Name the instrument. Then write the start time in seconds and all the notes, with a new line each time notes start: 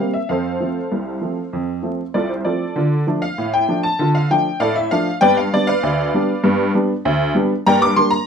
honky-tonk piano
Already playing: G3 F5
0.00 A#3 C4
0.13 E5
0.29 F2 A4 C5 F5
0.60 F3 A3 C4
0.92 C2
1.21 F3 A3 C4
1.53 F2
1.83 F3 A3 C4
2.14 C2 F4 A4 D5
2.29 C5
2.45 F3 A3 C4 F4 A4 D5
2.76 D3 F4
3.07 F3 A3 D4
3.22 F5
3.38 A2
3.54 G5
3.69 F3 A3 D4
3.83 A5
3.99 D3 F4
4.15 F5
4.31 F3 A3 D4 G5
4.60 A2 A4 D5 F5
4.76 E5
4.91 F3 A3 D4 F5
5.21 G2 B3 B4 D5 G5
5.37 F5
5.53 G3 B3 D4 D5
5.67 B4 D5 F5
5.83 D2
6.14 G3 B3 D4
6.44 G2 B3
6.75 G3 B3 D4
7.05 D2
7.35 G3 B3 D4
7.67 G2 A#3 D5 G5 A#5
7.82 D6
7.96 G3 A#3 D4 C6
8.11 A#5